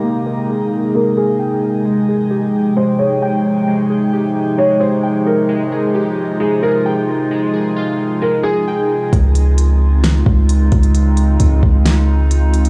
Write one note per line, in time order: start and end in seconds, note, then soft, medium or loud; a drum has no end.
0.00 9.09 C3 medium
0.00 9.09 G#3 medium
0.00 1.82 A#3 medium
0.00 0.93 A#3 medium
0.00 1.82 D#4 medium
0.00 1.84 G#4 medium
0.00 0.25 A#4 medium
0.00 0.94 G5 medium
0.26 1.16 A#4 medium
0.49 1.85 G#4 medium
0.94 1.85 A#3 medium
0.94 1.16 A#4 medium
1.17 1.81 G#4 medium
1.17 1.85 A#4 medium
1.39 1.85 G5 medium
1.85 9.09 F3 medium
1.85 2.75 G#3 medium
1.85 9.09 D#4 medium
1.85 5.45 G5 medium
2.09 2.98 G#4 medium
2.31 3.67 G4 medium
2.77 3.66 G#3 medium
2.77 2.98 C5 medium
2.98 3.89 G#4 medium
2.98 3.20 C#5 medium
3.22 4.58 G5 medium
3.68 4.57 G#3 medium
3.90 4.80 G#4 medium
4.13 5.49 G4 medium
4.58 5.48 G#3 medium
4.58 4.80 C#5 medium
4.80 5.71 G#4 medium
4.80 5.23 C5 medium
5.03 6.40 G5 medium
5.26 5.48 A#4 medium
5.49 6.39 G#3 medium
5.49 9.09 F4 medium
5.72 6.62 G#4 medium
5.95 7.31 G4 medium
6.40 7.30 G#3 medium
6.40 6.62 G#4 medium
6.63 7.52 G#4 medium
6.63 6.84 A#4 medium
6.86 8.22 G5 medium
7.31 8.21 G#3 medium
7.54 8.43 G#4 medium
7.76 9.13 F4 medium
8.22 9.13 G#3 medium
8.22 8.44 A#4 medium
8.43 9.08 G#4 medium
8.43 9.13 G#4 medium
8.68 9.13 G5 medium
9.13 10.22 C#2 loud
9.13 12.70 C#3 medium
9.13 12.70 G#3 medium
9.13 12.70 C4 medium
9.13 12.70 D#4 medium
9.13 12.70 F4 medium
9.13 kick loud
9.13 closed hi-hat medium
9.35 closed hi-hat medium
9.58 closed hi-hat medium
10.04 snare loud
10.04 closed hi-hat medium
10.26 10.70 C#2 loud
10.26 kick medium
10.49 closed hi-hat medium
10.72 11.37 C#2 loud
10.72 kick loud
10.72 closed hi-hat medium
10.83 closed hi-hat medium
10.95 closed hi-hat medium
11.17 closed hi-hat medium
11.40 11.62 C#2 loud
11.40 closed hi-hat medium
11.63 12.70 C#2 loud
11.63 kick medium
11.85 snare loud
11.85 closed hi-hat medium
12.31 closed hi-hat medium
12.54 closed hi-hat medium
12.65 closed hi-hat medium